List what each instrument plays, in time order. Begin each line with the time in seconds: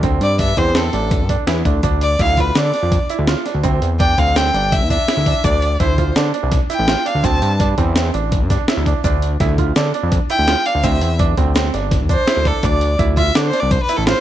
0.03 analog synth bass D2, grand piano C4, kick, closed hi-hat
0.21 analog synth bass G2, violin D5, closed hi-hat
0.39 grand piano D4, violin E5, kick, snare, closed hi-hat
0.57 analog synth bass E2, grand piano C4, violin C5, kick, closed hi-hat
0.75 grand piano C4, violin A4, snare, closed hi-hat
0.93 analog synth bass A1, grand piano D4, closed hi-hat
1.11 kick, closed hi-hat
1.20 analog synth bass G2
1.29 grand piano D4, kick, closed hi-hat
1.47 analog synth bass E2, grand piano E4, snare, closed hi-hat
1.65 analog synth bass D2, grand piano D4, kick, closed hi-hat
1.83 analog synth bass D2, grand piano D4, kick, closed hi-hat, shaker
2.01 violin D5, closed hi-hat
2.19 analog synth bass D2, grand piano E4, violin F5, kick, closed hi-hat
2.37 grand piano F4, violin B4, kick, closed hi-hat, shaker
2.55 analog synth bass D3, grand piano D4, violin D5, snare, closed hi-hat, shaker
2.74 grand piano D4, snare, closed hi-hat
2.83 analog synth bass F2
2.92 kick, closed hi-hat, shaker
3.10 grand piano E4, closed hi-hat, shaker
3.19 analog synth bass D2
3.27 grand piano F4, snare, closed hi-hat
3.46 grand piano D4, snare, closed hi-hat
3.54 analog synth bass D2
3.63 analog synth bass D2, grand piano C4, kick, closed hi-hat, shaker
3.82 analog synth bass E2, closed hi-hat
4.00 grand piano D4, violin G5, kick, closed hi-hat
4.18 analog synth bass D2, grand piano C4, violin F5, kick, closed hi-hat, shaker
4.36 grand piano C4, violin G5, snare, closed hi-hat, shaker
4.54 analog synth bass G1, grand piano D4, closed hi-hat
4.72 violin E5, kick, closed hi-hat, shaker
4.81 analog synth bass E2
4.90 grand piano D4, violin E5, kick, closed hi-hat, shaker
5.08 grand piano E4, snare, closed hi-hat
5.17 analog synth bass D2
5.26 grand piano D4, kick, closed hi-hat
5.44 analog synth bass D2, grand piano D4, violin D5, kick, closed hi-hat, shaker
5.62 closed hi-hat
5.80 analog synth bass D2, grand piano E4, violin C5, kick, closed hi-hat
5.98 grand piano F4, kick, closed hi-hat, shaker
6.16 analog synth bass D3, grand piano D4, snare, closed hi-hat, shaker
6.34 grand piano D4, closed hi-hat
6.43 analog synth bass C2
6.52 kick, snare, closed hi-hat, shaker
6.70 grand piano E4, violin G5, closed hi-hat, shaker
6.79 analog synth bass A1
6.88 grand piano F4, snare, closed hi-hat
7.05 grand piano D4, violin F5, closed hi-hat
7.15 analog synth bass D2
7.23 analog synth bass D2, grand piano C4, violin A5, kick, closed hi-hat, shaker
7.42 analog synth bass G2, closed hi-hat, shaker
7.60 grand piano D4, kick, snare, closed hi-hat
7.78 analog synth bass E2, grand piano C4, kick, closed hi-hat, shaker
7.96 grand piano C4, snare, closed hi-hat, shaker
8.14 analog synth bass A1, grand piano D4, closed hi-hat, shaker
8.32 kick, closed hi-hat
8.42 analog synth bass G2
8.50 grand piano D4, kick, snare, closed hi-hat, shaker
8.68 grand piano E4, snare, closed hi-hat, shaker
8.77 analog synth bass D2
8.86 grand piano D4, kick, closed hi-hat, shaker
9.04 analog synth bass D2, grand piano D4, kick, closed hi-hat, shaker
9.22 closed hi-hat
9.40 analog synth bass D2, grand piano E4, kick, snare, closed hi-hat
9.58 grand piano F4, kick, closed hi-hat, shaker
9.76 analog synth bass D3, grand piano D4, snare, closed hi-hat, shaker
9.94 grand piano D4, closed hi-hat
10.03 analog synth bass F2
10.12 kick, closed hi-hat, shaker
10.30 grand piano E4, violin G5, closed hi-hat, shaker
10.39 analog synth bass D2
10.48 grand piano F4, snare, closed hi-hat
10.66 grand piano D4, violin F5, closed hi-hat
10.75 analog synth bass D2
10.83 analog synth bass D2, grand piano C4, violin E5, kick, closed hi-hat, shaker
11.01 analog synth bass E2, closed hi-hat
11.19 grand piano D4, kick, closed hi-hat
11.37 analog synth bass D2, grand piano C4, kick, closed hi-hat, shaker
11.55 grand piano C4, snare, closed hi-hat, shaker
11.74 analog synth bass G1, grand piano D4, snare, closed hi-hat
11.91 kick, snare, closed hi-hat, shaker
12.01 analog synth bass E2
12.09 grand piano D4, violin C5, kick, closed hi-hat, shaker
12.27 grand piano E4, snare, closed hi-hat
12.37 analog synth bass D2
12.45 grand piano D4, violin A4, kick, closed hi-hat
12.63 analog synth bass D2, grand piano D4, violin D5, kick, closed hi-hat, shaker
12.81 closed hi-hat
12.99 analog synth bass D2, grand piano E4, kick, closed hi-hat
13.17 grand piano F4, violin E5, kick, closed hi-hat, shaker
13.35 analog synth bass D3, grand piano D4, violin D5, snare, closed hi-hat, shaker
13.47 violin C5
13.53 grand piano D4, snare, closed hi-hat
13.60 analog synth bass C2, violin D5
13.71 violin C5, kick, closed hi-hat, shaker
13.83 violin B4
13.88 grand piano E4, closed hi-hat, shaker
13.96 analog synth bass A1, violin A4
14.07 grand piano F4, violin C5, snare, closed hi-hat